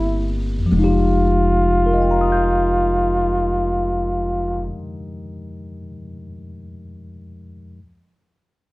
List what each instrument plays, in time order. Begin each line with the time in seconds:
Already playing: upright bass G1, tine electric piano G3 A#3 C4 E4 G4 A#4, flugelhorn E4
0.59 tine electric piano F2
0.66 tine electric piano F3
0.72 upright bass F1, tine electric piano G#3
0.77 tine electric piano D#4, flugelhorn F4
0.84 tine electric piano G4
1.86 tine electric piano A#4
1.94 tine electric piano D#5
2.02 tine electric piano G5
2.11 tine electric piano A#5
2.21 tine electric piano D#6
2.32 tine electric piano G6